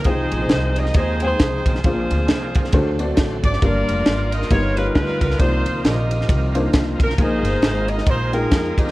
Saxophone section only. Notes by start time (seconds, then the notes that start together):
0.04 D#4 G#4 C5
0.79 D#5
0.95 D#4 G#4 C5
1.22 D#4 G#4 C5
1.68 F4 G#4 C5
3.46 D5
3.63 F4 A#4 D5
4.34 D#5
4.52 F4 A#4 C#5
4.78 B4
4.95 B4
5.21 B4
5.39 D#4 F4 C5
5.85 G4 A#4 D#5
7.04 A#4
7.20 D#4 G#4 C5
7.89 D#5
8.09 D#4 G#4 C5
8.34 D#4 F4 A#4
8.79 G4 C5 D#5